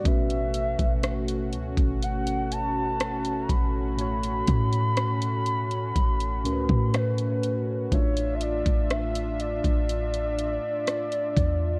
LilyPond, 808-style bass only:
\new Staff \with { instrumentName = "808-style bass" } { \clef bass \time 4/4 \key a \major \tempo 4 = 61 a,,8. a,,8. cis,16 gis,,4.~ gis,,16 a,,8~ | a,,8 a,4. a,,8 cis,16 a,4~ a,16 | a,,8. a,,4 a,,4 r8. e,8 | }